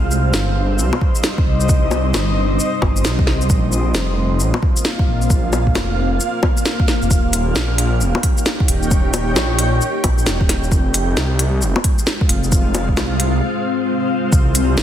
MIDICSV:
0, 0, Header, 1, 4, 480
1, 0, Start_track
1, 0, Key_signature, -4, "minor"
1, 0, Tempo, 451128
1, 1800, Time_signature, 4, 2, 24, 8
1, 15778, End_track
2, 0, Start_track
2, 0, Title_t, "Ambient pad"
2, 0, Program_c, 0, 92
2, 0, Note_on_c, 0, 55, 72
2, 0, Note_on_c, 0, 60, 87
2, 0, Note_on_c, 0, 65, 77
2, 0, Note_on_c, 0, 72, 79
2, 0, Note_on_c, 0, 77, 76
2, 221, Note_on_c, 0, 63, 73
2, 278, Note_on_c, 0, 75, 82
2, 1058, Note_off_c, 0, 77, 0
2, 1315, Note_off_c, 0, 65, 0
2, 3719, Note_off_c, 0, 55, 0
2, 3723, Note_on_c, 0, 58, 86
2, 3853, Note_on_c, 0, 65, 86
2, 3892, Note_on_c, 0, 77, 92
2, 4665, Note_off_c, 0, 63, 0
2, 5280, Note_off_c, 0, 75, 0
2, 7557, Note_off_c, 0, 60, 0
2, 7557, Note_off_c, 0, 72, 0
2, 7704, Note_on_c, 0, 63, 80
2, 7729, Note_on_c, 0, 67, 78
2, 7981, Note_on_c, 0, 73, 77
2, 8189, Note_on_c, 0, 79, 88
2, 8202, Note_off_c, 0, 77, 0
2, 8720, Note_off_c, 0, 65, 0
2, 11399, Note_off_c, 0, 73, 0
2, 11406, Note_on_c, 0, 56, 89
2, 11545, Note_on_c, 0, 65, 74
2, 11572, Note_on_c, 0, 60, 79
2, 11575, Note_on_c, 0, 72, 77
2, 11983, Note_on_c, 0, 77, 77
2, 12028, Note_off_c, 0, 58, 0
2, 12276, Note_off_c, 0, 63, 0
2, 12321, Note_off_c, 0, 67, 0
2, 12472, Note_off_c, 0, 79, 0
2, 15243, Note_off_c, 0, 56, 0
2, 15249, Note_on_c, 0, 55, 90
2, 15542, Note_on_c, 0, 63, 79
2, 15736, Note_on_c, 0, 75, 90
2, 15778, Note_off_c, 0, 55, 0
2, 15778, Note_off_c, 0, 60, 0
2, 15778, Note_off_c, 0, 63, 0
2, 15778, Note_off_c, 0, 65, 0
2, 15778, Note_off_c, 0, 72, 0
2, 15778, Note_off_c, 0, 75, 0
2, 15778, Note_off_c, 0, 77, 0
2, 15778, End_track
3, 0, Start_track
3, 0, Title_t, "Detuned saw bass"
3, 0, Program_c, 1, 39
3, 0, Note_on_c, 1, 36, 98
3, 347, Note_off_c, 1, 36, 0
3, 357, Note_on_c, 1, 31, 86
3, 839, Note_on_c, 1, 36, 96
3, 855, Note_off_c, 1, 31, 0
3, 979, Note_off_c, 1, 36, 0
3, 1558, Note_on_c, 1, 36, 96
3, 2268, Note_off_c, 1, 36, 0
3, 2281, Note_on_c, 1, 31, 91
3, 2749, Note_off_c, 1, 31, 0
3, 3000, Note_on_c, 1, 31, 102
3, 3241, Note_on_c, 1, 36, 84
3, 3257, Note_off_c, 1, 31, 0
3, 3380, Note_off_c, 1, 36, 0
3, 3391, Note_on_c, 1, 36, 74
3, 3709, Note_off_c, 1, 36, 0
3, 3723, Note_on_c, 1, 34, 102
3, 4191, Note_off_c, 1, 34, 0
3, 4198, Note_on_c, 1, 29, 84
3, 4679, Note_on_c, 1, 34, 94
3, 4694, Note_off_c, 1, 29, 0
3, 4819, Note_off_c, 1, 34, 0
3, 5399, Note_on_c, 1, 34, 99
3, 6109, Note_off_c, 1, 34, 0
3, 6118, Note_on_c, 1, 29, 87
3, 6588, Note_off_c, 1, 29, 0
3, 7470, Note_on_c, 1, 29, 94
3, 7553, Note_off_c, 1, 29, 0
3, 7559, Note_on_c, 1, 27, 99
3, 8029, Note_off_c, 1, 27, 0
3, 8041, Note_on_c, 1, 34, 92
3, 8520, Note_on_c, 1, 27, 93
3, 8536, Note_off_c, 1, 34, 0
3, 8660, Note_off_c, 1, 27, 0
3, 9240, Note_on_c, 1, 27, 97
3, 9949, Note_off_c, 1, 27, 0
3, 9959, Note_on_c, 1, 34, 86
3, 10428, Note_off_c, 1, 34, 0
3, 10683, Note_on_c, 1, 34, 101
3, 10923, Note_on_c, 1, 27, 87
3, 10939, Note_off_c, 1, 34, 0
3, 11061, Note_off_c, 1, 27, 0
3, 11074, Note_on_c, 1, 27, 74
3, 11390, Note_off_c, 1, 27, 0
3, 11403, Note_on_c, 1, 29, 98
3, 11871, Note_off_c, 1, 29, 0
3, 11881, Note_on_c, 1, 36, 88
3, 12364, Note_on_c, 1, 29, 97
3, 12380, Note_off_c, 1, 36, 0
3, 12501, Note_off_c, 1, 29, 0
3, 13083, Note_on_c, 1, 29, 103
3, 13791, Note_off_c, 1, 29, 0
3, 13801, Note_on_c, 1, 36, 87
3, 14269, Note_off_c, 1, 36, 0
3, 15243, Note_on_c, 1, 36, 97
3, 15710, Note_off_c, 1, 36, 0
3, 15720, Note_on_c, 1, 31, 91
3, 15778, Note_off_c, 1, 31, 0
3, 15778, End_track
4, 0, Start_track
4, 0, Title_t, "Drums"
4, 118, Note_on_c, 9, 82, 55
4, 225, Note_off_c, 9, 82, 0
4, 358, Note_on_c, 9, 38, 95
4, 358, Note_on_c, 9, 82, 55
4, 465, Note_off_c, 9, 38, 0
4, 465, Note_off_c, 9, 82, 0
4, 837, Note_on_c, 9, 82, 53
4, 943, Note_off_c, 9, 82, 0
4, 987, Note_on_c, 9, 61, 61
4, 1079, Note_on_c, 9, 36, 97
4, 1094, Note_off_c, 9, 61, 0
4, 1185, Note_off_c, 9, 36, 0
4, 1226, Note_on_c, 9, 82, 53
4, 1315, Note_off_c, 9, 82, 0
4, 1315, Note_on_c, 9, 38, 98
4, 1315, Note_on_c, 9, 82, 54
4, 1422, Note_off_c, 9, 38, 0
4, 1422, Note_off_c, 9, 82, 0
4, 1470, Note_on_c, 9, 36, 97
4, 1576, Note_off_c, 9, 36, 0
4, 1707, Note_on_c, 9, 82, 32
4, 1796, Note_off_c, 9, 82, 0
4, 1796, Note_on_c, 9, 82, 53
4, 1800, Note_on_c, 9, 36, 121
4, 1902, Note_off_c, 9, 82, 0
4, 1906, Note_off_c, 9, 36, 0
4, 2035, Note_on_c, 9, 61, 57
4, 2035, Note_on_c, 9, 82, 52
4, 2141, Note_off_c, 9, 61, 0
4, 2141, Note_off_c, 9, 82, 0
4, 2279, Note_on_c, 9, 38, 98
4, 2279, Note_on_c, 9, 61, 58
4, 2279, Note_on_c, 9, 82, 53
4, 2385, Note_off_c, 9, 38, 0
4, 2385, Note_off_c, 9, 61, 0
4, 2385, Note_off_c, 9, 82, 0
4, 2762, Note_on_c, 9, 82, 57
4, 2868, Note_off_c, 9, 82, 0
4, 3000, Note_on_c, 9, 61, 65
4, 3001, Note_on_c, 9, 36, 101
4, 3106, Note_off_c, 9, 61, 0
4, 3107, Note_off_c, 9, 36, 0
4, 3153, Note_on_c, 9, 82, 55
4, 3242, Note_off_c, 9, 82, 0
4, 3242, Note_on_c, 9, 38, 108
4, 3242, Note_on_c, 9, 82, 55
4, 3348, Note_off_c, 9, 38, 0
4, 3348, Note_off_c, 9, 82, 0
4, 3392, Note_on_c, 9, 36, 105
4, 3479, Note_on_c, 9, 38, 61
4, 3499, Note_off_c, 9, 36, 0
4, 3586, Note_off_c, 9, 38, 0
4, 3632, Note_on_c, 9, 82, 31
4, 3720, Note_off_c, 9, 82, 0
4, 3720, Note_on_c, 9, 82, 55
4, 3721, Note_on_c, 9, 36, 120
4, 3826, Note_off_c, 9, 82, 0
4, 3828, Note_off_c, 9, 36, 0
4, 3959, Note_on_c, 9, 82, 53
4, 4066, Note_off_c, 9, 82, 0
4, 4199, Note_on_c, 9, 38, 98
4, 4199, Note_on_c, 9, 82, 54
4, 4305, Note_off_c, 9, 38, 0
4, 4305, Note_off_c, 9, 82, 0
4, 4679, Note_on_c, 9, 82, 55
4, 4785, Note_off_c, 9, 82, 0
4, 4830, Note_on_c, 9, 61, 55
4, 4921, Note_on_c, 9, 36, 106
4, 4937, Note_off_c, 9, 61, 0
4, 5028, Note_off_c, 9, 36, 0
4, 5071, Note_on_c, 9, 82, 49
4, 5159, Note_off_c, 9, 82, 0
4, 5159, Note_on_c, 9, 38, 101
4, 5159, Note_on_c, 9, 82, 56
4, 5265, Note_off_c, 9, 38, 0
4, 5265, Note_off_c, 9, 82, 0
4, 5313, Note_on_c, 9, 36, 107
4, 5419, Note_off_c, 9, 36, 0
4, 5551, Note_on_c, 9, 82, 31
4, 5641, Note_on_c, 9, 36, 116
4, 5642, Note_off_c, 9, 82, 0
4, 5642, Note_on_c, 9, 82, 51
4, 5748, Note_off_c, 9, 36, 0
4, 5748, Note_off_c, 9, 82, 0
4, 5882, Note_on_c, 9, 61, 53
4, 5882, Note_on_c, 9, 82, 49
4, 5988, Note_off_c, 9, 61, 0
4, 5988, Note_off_c, 9, 82, 0
4, 6032, Note_on_c, 9, 36, 61
4, 6122, Note_on_c, 9, 38, 98
4, 6122, Note_on_c, 9, 61, 52
4, 6122, Note_on_c, 9, 82, 51
4, 6138, Note_off_c, 9, 36, 0
4, 6229, Note_off_c, 9, 38, 0
4, 6229, Note_off_c, 9, 61, 0
4, 6229, Note_off_c, 9, 82, 0
4, 6599, Note_on_c, 9, 82, 54
4, 6706, Note_off_c, 9, 82, 0
4, 6839, Note_on_c, 9, 61, 62
4, 6841, Note_on_c, 9, 36, 101
4, 6945, Note_off_c, 9, 61, 0
4, 6947, Note_off_c, 9, 36, 0
4, 6992, Note_on_c, 9, 82, 51
4, 7081, Note_off_c, 9, 82, 0
4, 7081, Note_on_c, 9, 38, 104
4, 7081, Note_on_c, 9, 82, 51
4, 7188, Note_off_c, 9, 38, 0
4, 7188, Note_off_c, 9, 82, 0
4, 7231, Note_on_c, 9, 36, 102
4, 7321, Note_on_c, 9, 38, 60
4, 7321, Note_on_c, 9, 82, 30
4, 7338, Note_off_c, 9, 36, 0
4, 7428, Note_off_c, 9, 38, 0
4, 7428, Note_off_c, 9, 82, 0
4, 7472, Note_on_c, 9, 82, 29
4, 7561, Note_off_c, 9, 82, 0
4, 7561, Note_on_c, 9, 36, 109
4, 7561, Note_on_c, 9, 82, 50
4, 7667, Note_off_c, 9, 36, 0
4, 7668, Note_off_c, 9, 82, 0
4, 7801, Note_on_c, 9, 46, 68
4, 7801, Note_on_c, 9, 82, 49
4, 7907, Note_off_c, 9, 46, 0
4, 7907, Note_off_c, 9, 82, 0
4, 8040, Note_on_c, 9, 38, 104
4, 8040, Note_on_c, 9, 82, 50
4, 8147, Note_off_c, 9, 38, 0
4, 8147, Note_off_c, 9, 82, 0
4, 8282, Note_on_c, 9, 46, 67
4, 8388, Note_off_c, 9, 46, 0
4, 8520, Note_on_c, 9, 82, 52
4, 8627, Note_off_c, 9, 82, 0
4, 8671, Note_on_c, 9, 61, 60
4, 8759, Note_on_c, 9, 46, 75
4, 8762, Note_on_c, 9, 36, 104
4, 8777, Note_off_c, 9, 61, 0
4, 8866, Note_off_c, 9, 46, 0
4, 8868, Note_off_c, 9, 36, 0
4, 8912, Note_on_c, 9, 82, 50
4, 9000, Note_off_c, 9, 82, 0
4, 9000, Note_on_c, 9, 38, 107
4, 9000, Note_on_c, 9, 82, 50
4, 9106, Note_off_c, 9, 38, 0
4, 9106, Note_off_c, 9, 82, 0
4, 9153, Note_on_c, 9, 36, 102
4, 9239, Note_on_c, 9, 46, 72
4, 9260, Note_off_c, 9, 36, 0
4, 9345, Note_off_c, 9, 46, 0
4, 9391, Note_on_c, 9, 82, 28
4, 9479, Note_off_c, 9, 82, 0
4, 9479, Note_on_c, 9, 82, 52
4, 9483, Note_on_c, 9, 36, 116
4, 9585, Note_off_c, 9, 82, 0
4, 9589, Note_off_c, 9, 36, 0
4, 9722, Note_on_c, 9, 46, 73
4, 9722, Note_on_c, 9, 61, 58
4, 9722, Note_on_c, 9, 82, 49
4, 9828, Note_off_c, 9, 46, 0
4, 9828, Note_off_c, 9, 61, 0
4, 9828, Note_off_c, 9, 82, 0
4, 9961, Note_on_c, 9, 38, 95
4, 9961, Note_on_c, 9, 61, 57
4, 9961, Note_on_c, 9, 82, 52
4, 10067, Note_off_c, 9, 38, 0
4, 10067, Note_off_c, 9, 61, 0
4, 10067, Note_off_c, 9, 82, 0
4, 10199, Note_on_c, 9, 46, 71
4, 10306, Note_off_c, 9, 46, 0
4, 10442, Note_on_c, 9, 82, 50
4, 10548, Note_off_c, 9, 82, 0
4, 10681, Note_on_c, 9, 46, 73
4, 10681, Note_on_c, 9, 61, 65
4, 10683, Note_on_c, 9, 36, 98
4, 10787, Note_off_c, 9, 46, 0
4, 10787, Note_off_c, 9, 61, 0
4, 10789, Note_off_c, 9, 36, 0
4, 10833, Note_on_c, 9, 82, 47
4, 10922, Note_off_c, 9, 82, 0
4, 10922, Note_on_c, 9, 38, 104
4, 10922, Note_on_c, 9, 82, 53
4, 11028, Note_off_c, 9, 38, 0
4, 11028, Note_off_c, 9, 82, 0
4, 11073, Note_on_c, 9, 36, 95
4, 11164, Note_on_c, 9, 38, 56
4, 11164, Note_on_c, 9, 46, 70
4, 11180, Note_off_c, 9, 36, 0
4, 11270, Note_off_c, 9, 38, 0
4, 11270, Note_off_c, 9, 46, 0
4, 11315, Note_on_c, 9, 82, 28
4, 11402, Note_on_c, 9, 36, 106
4, 11403, Note_off_c, 9, 82, 0
4, 11403, Note_on_c, 9, 82, 52
4, 11508, Note_off_c, 9, 36, 0
4, 11509, Note_off_c, 9, 82, 0
4, 11642, Note_on_c, 9, 46, 75
4, 11642, Note_on_c, 9, 82, 52
4, 11749, Note_off_c, 9, 46, 0
4, 11749, Note_off_c, 9, 82, 0
4, 11884, Note_on_c, 9, 38, 91
4, 11884, Note_on_c, 9, 82, 52
4, 11991, Note_off_c, 9, 38, 0
4, 11991, Note_off_c, 9, 82, 0
4, 12121, Note_on_c, 9, 46, 73
4, 12228, Note_off_c, 9, 46, 0
4, 12360, Note_on_c, 9, 82, 53
4, 12467, Note_off_c, 9, 82, 0
4, 12511, Note_on_c, 9, 61, 62
4, 12599, Note_on_c, 9, 46, 75
4, 12601, Note_on_c, 9, 36, 102
4, 12617, Note_off_c, 9, 61, 0
4, 12706, Note_off_c, 9, 46, 0
4, 12708, Note_off_c, 9, 36, 0
4, 12751, Note_on_c, 9, 82, 53
4, 12840, Note_off_c, 9, 82, 0
4, 12840, Note_on_c, 9, 38, 99
4, 12840, Note_on_c, 9, 82, 53
4, 12946, Note_off_c, 9, 38, 0
4, 12946, Note_off_c, 9, 82, 0
4, 12993, Note_on_c, 9, 36, 97
4, 13079, Note_on_c, 9, 46, 77
4, 13099, Note_off_c, 9, 36, 0
4, 13186, Note_off_c, 9, 46, 0
4, 13232, Note_on_c, 9, 82, 30
4, 13321, Note_off_c, 9, 82, 0
4, 13321, Note_on_c, 9, 82, 54
4, 13322, Note_on_c, 9, 36, 115
4, 13427, Note_off_c, 9, 82, 0
4, 13428, Note_off_c, 9, 36, 0
4, 13562, Note_on_c, 9, 46, 69
4, 13562, Note_on_c, 9, 61, 62
4, 13562, Note_on_c, 9, 82, 54
4, 13668, Note_off_c, 9, 46, 0
4, 13668, Note_off_c, 9, 61, 0
4, 13668, Note_off_c, 9, 82, 0
4, 13712, Note_on_c, 9, 36, 57
4, 13802, Note_on_c, 9, 38, 96
4, 13802, Note_on_c, 9, 61, 59
4, 13802, Note_on_c, 9, 82, 54
4, 13819, Note_off_c, 9, 36, 0
4, 13908, Note_off_c, 9, 38, 0
4, 13908, Note_off_c, 9, 61, 0
4, 13908, Note_off_c, 9, 82, 0
4, 14042, Note_on_c, 9, 46, 68
4, 14148, Note_off_c, 9, 46, 0
4, 15241, Note_on_c, 9, 36, 121
4, 15241, Note_on_c, 9, 82, 57
4, 15348, Note_off_c, 9, 36, 0
4, 15348, Note_off_c, 9, 82, 0
4, 15481, Note_on_c, 9, 46, 69
4, 15481, Note_on_c, 9, 82, 58
4, 15587, Note_off_c, 9, 46, 0
4, 15587, Note_off_c, 9, 82, 0
4, 15721, Note_on_c, 9, 38, 102
4, 15721, Note_on_c, 9, 82, 58
4, 15778, Note_off_c, 9, 38, 0
4, 15778, Note_off_c, 9, 82, 0
4, 15778, End_track
0, 0, End_of_file